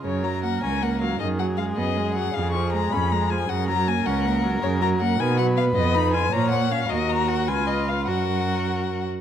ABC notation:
X:1
M:6/8
L:1/8
Q:3/8=105
K:F#
V:1 name="Violin"
c a f g f e | d f e d2 f | e c' a b a g | f a g f2 z |
c a f g f e | _e _c' _a ^a f ^e | d a f g d e | f4- f z |]
V:2 name="Violin"
A6 | G6- | G6 | A6- |
A3 B3- | B3 c3 | A3 B3 | A4- A z |]
V:3 name="Viola" clef=bass
C, F, A, C A, F, | D, F, G, B, G, F, | C, E, G, C G, E, | C, F, A, C A, F, |
C, F, A, D, F, B, | _C _E =F ^E, A, ^C | F3 E3 | F4- F z |]
V:4 name="Cello" clef=bass
F,,3 C,,3 | F,,3 F,,3 | E,,3 E,,3 | F,,3 C,,3 |
F,,3 B,,3 | =F,,3 A,,3 | D,,3 C,,3 | F,,4- F,, z |]